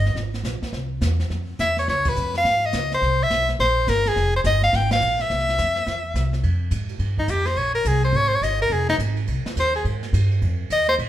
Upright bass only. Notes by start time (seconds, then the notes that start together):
Already playing: G1
0.15 G#1
0.43 A#1
0.62 muted upright bass stroke
0.72 C2
1.01 E2
1.30 F2
1.59 E2
1.88 C#2
2.17 F2
2.44 G#2
2.73 C#2
3.02 C2
3.30 B1
3.59 A#1
3.87 G1
4.16 F1
4.44 G1
4.73 G#1
5.01 A#1
5.30 C2
5.59 F2
5.86 E2
6.14 C2
6.43 F2
6.71 G#2
6.99 G2
7.28 F2
7.56 A#1
7.85 C2
8.13 G#1
8.42 G1
8.70 F1
8.98 G#1
9.28 C2
9.46 muted upright bass stroke
9.56 D#2
9.85 G#2
10.13 G2
10.42 F2
10.70 D#2
10.99 A#2